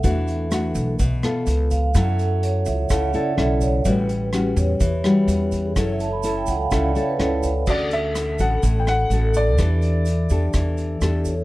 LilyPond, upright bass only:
\new Staff \with { instrumentName = "Upright bass" } { \clef bass \time 4/4 \key fis \phrygian \tempo 4 = 126 e,4. b,,8 b,,8 r8 cis,4 | fis,4. cis,8 cis,8 r8 b,,4 | a,,4. e,8 e,8 r8 e,4 | fis,,4. cis,8 cis,8 r8 cis,4 |
\key d \major d,4. a,,8 a,,4 a,,4 | e,4. e,8 e,4 e,4 | }